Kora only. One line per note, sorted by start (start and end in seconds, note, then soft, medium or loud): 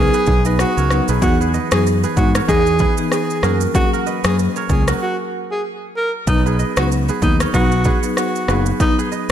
0.00 0.14 G#4 medium
0.00 0.20 A#4 medium
0.00 0.77 C#5 medium
0.14 1.09 G#4 medium
0.14 0.46 B4 medium
0.46 0.84 B4 medium
0.46 1.53 D#5 medium
0.77 1.15 A#4 medium
0.77 1.92 C#5 medium
1.09 1.41 G#4 medium
1.09 1.40 B4 medium
1.40 2.04 G#4 medium
1.40 1.54 B4 medium
1.54 2.03 B4 medium
1.54 2.48 D#5 medium
2.04 2.81 G#4 medium
2.04 2.42 B4 medium
2.35 2.55 A#4 medium
2.35 3.50 C#5 medium
2.48 2.80 B4 medium
2.48 3.55 D#5 medium
2.80 4.17 G#4 medium
2.80 3.49 B4 medium
3.43 3.94 F#4 medium
3.43 3.93 A#4 medium
3.93 4.88 F#4 medium
3.93 4.13 A#4 medium
4.06 4.63 B4 medium
4.06 5.14 D#5 medium
4.56 4.87 A#4 medium
4.56 5.71 C#5 medium
4.88 6.35 F#4 medium
4.88 6.15 A#4 medium
6.46 7.09 G#4 medium
6.46 6.59 B4 medium
6.59 7.08 B4 medium
6.59 7.53 D#5 medium
7.09 7.86 G#4 medium
7.09 7.47 B4 medium
7.40 7.60 A#4 medium
7.40 8.55 C#5 medium
7.54 7.85 B4 medium
7.54 8.61 D#5 medium
7.85 8.49 G#4 medium
7.85 8.48 B4 medium
8.48 8.99 G#4 medium
8.48 8.98 B4 medium
8.98 9.32 G#4 medium
8.98 9.12 B4 medium
9.12 9.32 B4 medium
9.12 9.32 D#5 medium